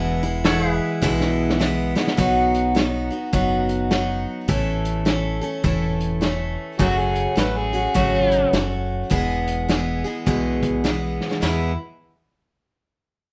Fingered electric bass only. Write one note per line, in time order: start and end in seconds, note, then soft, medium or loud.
0.00 0.79 E1 medium
1.02 1.94 B1 medium
2.18 3.10 B1 medium
3.33 4.25 F#1 medium
4.48 5.40 A1 medium
5.64 6.56 E1 medium
6.79 7.25 F#1 medium
7.37 7.87 A1 medium
7.95 8.44 G#1 medium
8.53 9.02 F#1 medium
9.11 10.03 E1 medium
10.27 11.19 B1 medium
11.43 11.76 E2 medium